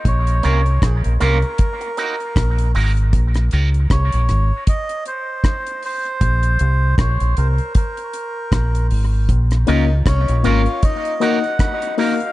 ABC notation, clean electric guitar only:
X:1
M:4/4
L:1/8
Q:"Swing 16ths" 1/4=78
K:Bbm
V:1 name="Clean electric guitar"
z [B,DFB] z [B,DFB] z [B,EGB] z [B,EGB] | z [B,DFB] z6 | z8 | z [B,DFB] z [B,DFB] z [B,EGB] z [B,EGB] |]